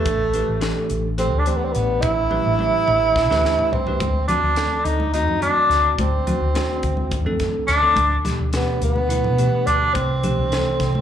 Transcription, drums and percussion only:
0.05 kick medium
0.05 closed hi-hat medium
0.34 closed hi-hat medium
0.61 snare medium
0.61 closed hi-hat medium
0.90 closed hi-hat soft
1.18 closed hi-hat medium
1.46 closed hi-hat soft
1.75 closed hi-hat soft
2.02 kick medium
2.02 closed hi-hat medium
2.31 high tom soft
2.59 high tom medium
2.88 mid tom medium
3.16 kick medium
3.16 snare medium
3.31 snare medium
3.45 snare medium
3.59 floor tom medium
3.73 floor tom medium
3.87 floor tom medium
4.00 kick loud
4.00 closed hi-hat medium
4.00 high conga medium
4.29 closed hi-hat medium
4.29 low conga medium
4.56 snare medium
4.56 closed hi-hat medium
4.85 closed hi-hat soft
5.00 high conga medium
5.14 closed hi-hat medium
5.28 low conga medium
5.42 closed hi-hat soft
5.42 low conga soft
5.57 low conga soft
5.71 snare soft
5.71 closed hi-hat soft
5.99 kick medium
5.99 closed hi-hat medium
5.99 high conga medium
6.27 closed hi-hat soft
6.27 low conga medium
6.55 snare medium
6.55 closed hi-hat medium
6.83 kick medium
6.83 closed hi-hat soft
6.97 high conga medium
7.11 kick medium
7.11 closed hi-hat medium
7.26 low conga medium
7.40 kick medium
7.40 snare soft
7.40 closed hi-hat soft
7.40 low conga soft
7.54 low conga soft
7.68 snare soft
7.68 closed hi-hat medium
7.96 kick loud
7.96 closed hi-hat medium
7.96 high conga medium
8.25 snare soft
8.25 closed hi-hat medium
8.25 low conga medium
8.53 snare medium
8.53 closed hi-hat medium
8.82 closed hi-hat medium
8.96 high conga medium
9.10 closed hi-hat medium
9.24 low conga medium
9.38 closed hi-hat medium
9.38 low conga soft
9.53 low conga soft
9.67 closed hi-hat soft
9.95 kick loud
9.95 closed hi-hat medium
9.95 high conga medium
9.95 low conga soft
10.23 closed hi-hat medium
10.23 low conga medium
10.52 snare medium
10.52 closed hi-hat medium
10.52 low conga soft
10.80 kick medium
10.80 snare soft
10.80 closed hi-hat soft
10.95 high conga medium
10.95 low conga soft

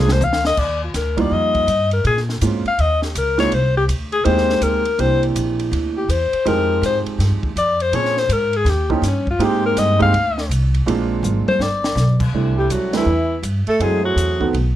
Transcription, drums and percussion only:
0.09 snare medium
0.21 hi-hat pedal medium
0.21 mid tom medium
0.33 snare medium
0.45 snare medium
0.57 kick medium
0.57 crash medium
0.94 snare soft
0.94 hi-hat pedal medium
0.94 ride medium
1.18 kick soft
1.18 ride medium
1.55 kick soft
1.55 ride soft
1.68 hi-hat pedal medium
1.68 ride medium
1.91 ride soft
2.05 ride medium
2.17 snare soft
2.29 snare soft
2.41 hi-hat pedal medium
2.41 ride medium
2.66 ride soft
2.79 ride medium
3.02 snare soft
3.15 hi-hat pedal medium
3.15 ride medium
3.39 snare soft
3.39 ride soft
3.52 ride medium
3.89 hi-hat pedal soft
3.89 ride medium
4.12 ride soft
4.25 ride medium
4.38 snare soft
4.50 snare soft
4.62 hi-hat pedal soft
4.62 ride medium
4.85 ride soft
4.99 ride medium
5.23 ride soft
5.36 hi-hat pedal medium
5.36 ride medium
5.60 ride soft
5.73 ride medium
6.10 hi-hat pedal soft
6.10 ride medium
6.33 ride soft
6.46 ride medium
6.83 hi-hat pedal medium
6.83 ride medium
7.06 ride soft
7.20 snare soft
7.20 ride medium
7.43 kick medium
7.57 hi-hat pedal soft
7.57 ride medium
7.80 ride soft
7.93 ride medium
8.05 snare soft
8.17 snare soft
8.30 hi-hat pedal soft
8.30 ride medium
8.53 ride soft
8.66 snare soft
8.66 ride medium
8.90 kick medium
9.03 snare soft
9.03 hi-hat pedal medium
9.03 ride medium
9.27 kick medium
9.40 ride medium
9.77 snare soft
9.77 hi-hat pedal medium
9.77 ride medium
10.00 kick medium
10.00 ride soft
10.14 ride medium
10.38 snare medium
10.51 hi-hat pedal medium
10.51 ride medium
10.74 ride soft
10.88 ride medium
11.24 hi-hat pedal medium
11.24 high tom medium
11.48 high tom medium
11.61 snare medium
11.84 snare medium
11.97 snare medium
11.97 hi-hat pedal medium
12.20 kick medium
12.20 crash medium
12.70 hi-hat pedal medium
12.70 ride medium
12.93 snare medium
12.93 ride medium
13.43 hi-hat pedal medium
13.43 ride medium
13.67 ride soft
13.80 ride medium
14.18 hi-hat pedal medium
14.18 ride medium
14.41 kick soft
14.54 ride medium

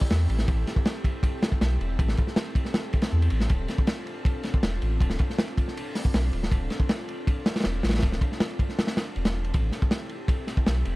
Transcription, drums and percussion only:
0.01 kick medium
0.10 snare loud
0.10 ride medium
0.19 ride soft
0.30 ride medium
0.38 snare medium
0.48 kick loud
0.48 ride medium
0.67 snare soft
0.67 ride medium
0.76 kick medium
0.85 snare loud
0.85 ride medium
1.04 kick medium
1.04 ride medium
1.23 kick loud
1.23 ride loud
1.43 snare loud
1.43 ride medium
1.52 kick medium
1.61 snare loud
1.61 ride medium
1.81 ride medium
1.99 kick loud
1.99 ride medium
2.08 snare medium
2.17 kick loud
2.17 ride medium
2.27 snare soft
2.36 snare loud
2.36 ride medium
2.46 ride soft
2.55 kick medium
2.55 ride medium
2.65 snare soft
2.74 snare loud
2.74 ride medium
2.84 ride soft
2.93 kick medium
2.93 ride medium
3.02 snare medium
3.02 ride medium
3.13 ride soft
3.22 ride medium
3.30 ride medium
3.40 snare medium
3.49 kick loud
3.49 ride medium
3.68 snare soft
3.68 ride medium
3.78 kick medium
3.87 snare loud
3.87 ride loud
4.07 ride medium
4.25 kick loud
4.25 ride medium
4.43 snare soft
4.43 ride medium
4.54 kick loud
4.63 snare loud
4.63 ride medium
4.82 ride medium
5.00 kick loud
5.00 ride medium
5.10 snare medium
5.19 kick loud
5.19 ride medium
5.30 snare soft
5.38 snare loud
5.38 ride medium
5.48 ride soft
5.57 kick medium
5.57 ride medium
5.68 snare soft
5.77 ride loud
5.95 snare soft
5.95 open hi-hat medium
6.05 kick loud
6.14 snare loud
6.14 ride medium
6.24 ride soft
6.33 ride medium
6.43 snare medium
6.52 kick loud
6.52 ride medium
6.70 snare soft
6.70 ride medium
6.80 kick medium
6.89 snare loud
6.89 ride medium
7.08 ride medium
7.27 kick loud
7.27 ride medium
7.46 snare loud
7.46 ride medium
7.56 snare medium
7.56 ride medium
7.60 snare medium
7.60 ride medium
7.64 snare loud
7.64 ride medium
7.83 snare medium
7.83 ride medium
7.89 snare medium
7.89 ride medium
7.93 snare medium
7.93 ride medium
7.98 snare medium
7.98 ride medium
8.03 kick loud
8.03 ride medium
8.12 snare medium
8.21 kick loud
8.21 ride medium
8.32 snare soft
8.40 snare loud
8.40 ride medium
8.50 ride soft
8.59 kick medium
8.59 ride medium
8.69 snare soft
8.79 snare loud
8.79 ride medium
8.87 snare loud
8.87 ride medium
8.97 snare loud
8.97 ride medium
9.16 ride medium
9.25 snare loud
9.25 ride medium
9.44 ride medium
9.54 kick loud
9.54 ride medium
9.72 snare soft
9.72 ride medium
9.82 kick loud
9.91 snare loud
9.91 ride medium
10.09 ride medium
10.28 kick loud
10.28 ride medium
10.47 snare soft
10.47 ride medium
10.57 kick medium
10.66 snare loud
10.66 ride loud
10.85 ride medium

